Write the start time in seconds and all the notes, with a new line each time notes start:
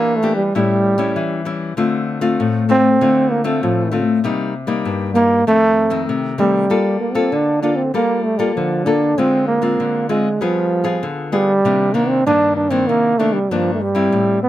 Already playing: E3 A#3 D4 G4
0.16 A3
0.23 A#3 D4 G4
0.36 G3
0.55 A2 G3 C#4 E4
0.98 G3 C#4 E4
1.16 E3
1.45 G3 C#4 E4
1.77 D3 A3 C4 F4
2.21 A3 C4 F4
2.40 A2
2.69 A3 C4 F4
3.01 D3 A3 C4 F4
3.31 A#3
3.44 A3 C4 F4
3.63 A2 F3
3.92 A3 C4 F4
4.24 C3 G3 A#3 D#4
4.67 G3 A#3 D#4
4.85 G2
5.15 G3 A#3 D#4
5.47 F2 D#3 A3 C4
5.90 D#3 A3 C4
6.09 C3
6.38 D#3 G3 A3 C4
6.70 G3 A#3 F4 A4
7.01 A#3
7.14 A#3 C4 F4 A4
7.32 D3 D4
7.62 A#3 D4 F4 A4
7.76 C4
7.94 G3 A#3 F4 A4
8.24 A3
8.38 G3 A#3 F4 A4
8.56 D3 F3
8.85 A#3 D4 F4 A4
9.18 D3 G#3 C4 F4
9.47 A#3
9.62 G#3 C4 F4
9.80 D3
10.09 G#3 C4 F4
10.41 F3 G3 B3 F4 G#4
10.84 B3 F4 G#4
11.03 D3
11.32 G3 B3 F4 G#4
11.65 C3 D#3 A#3 D4
11.94 D#3 A#3 D4
12.09 C4
12.26 G2 D#3 A#3 D4
12.57 D4
12.70 D#3 A#3 C4 D4
12.87 C3 A#3
13.18 D#3 A3 A#3 D4
13.33 G3
13.51 G2 D#3 F3 A#3 D4
13.74 A3
13.81 G3
13.95 G3 C4 E4
14.12 A2
14.43 B3